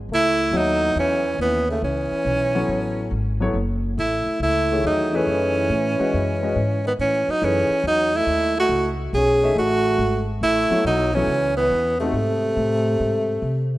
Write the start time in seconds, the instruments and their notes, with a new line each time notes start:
0.09 upright bass C#2, trombone A3
0.14 tenor saxophone E4
0.51 upright bass D#2, grand piano F#3 B3 F#4 A4 C#5, trombone F#3
0.57 tenor saxophone D#4
0.95 upright bass E2, trombone E3
0.99 tenor saxophone C#4
1.38 upright bass D#2, trombone E3, tenor saxophone B3
1.68 trombone C#3, tenor saxophone A3
1.81 upright bass C#2, trombone E3, tenor saxophone C#4
2.12 muted upright bass stroke
2.25 upright bass B1
2.55 grand piano F#3 B3 E4 A4 C#5
2.68 upright bass A1
3.11 upright bass G#1
3.40 grand piano F#3 B3 E4 A4 C#5
3.54 upright bass F#1
3.97 upright bass A1, trombone A3, tenor saxophone E4
4.27 muted upright bass stroke
4.40 upright bass C#2, trombone A3, tenor saxophone E4
4.71 grand piano D#3 A3 G#4 C#5 E5
4.84 upright bass E2, trombone F#3, tenor saxophone D#4
5.13 trombone E3, grand piano E3 A3 D#4 G#4 B4, tenor saxophone C#4
5.26 upright bass F#2
5.69 upright bass A2
5.99 grand piano G#3 C#4 F#4 B4 D#5, muted upright bass stroke
6.14 upright bass F#2
6.43 grand piano G#3 C#4 F#4 B4 D#5
6.56 upright bass G#2
6.85 trombone D#3, tenor saxophone B3
6.99 upright bass A2, trombone E3, tenor saxophone C#4
7.28 trombone F#3, tenor saxophone D#4, muted upright bass stroke
7.41 upright bass F#2, grand piano E3 A3 D#4 G#4 B4, trombone E3, tenor saxophone C#4
7.70 muted upright bass stroke
7.83 upright bass E2, trombone F#3, tenor saxophone D#4
8.16 trombone A3, tenor saxophone E4
8.27 upright bass D#2
8.58 trombone A3, tenor saxophone F#4
8.69 upright bass C#2
9.13 upright bass B1, trombone C#4, tenor saxophone G#4
9.43 grand piano A3 D#4 G#4 C#5 E5
9.55 upright bass A1, trombone A3, tenor saxophone F#4
9.98 upright bass G#1
10.41 upright bass A1, trombone A3, tenor saxophone E4
10.70 grand piano F#3 B3 E4 A4 C#5, muted upright bass stroke
10.85 upright bass B1, trombone F#3, tenor saxophone D#4
11.13 trombone E3, grand piano F#3 B3 E4 A4 C#5, tenor saxophone C#4
11.27 upright bass C#2
11.57 trombone E3, tenor saxophone B3
11.71 upright bass E2
11.99 trombone C3, tenor saxophone A3, grand piano A3 C4 D#4 F#4 A4
12.13 upright bass G#2
12.56 upright bass A2
13.00 upright bass G#2
13.42 upright bass C3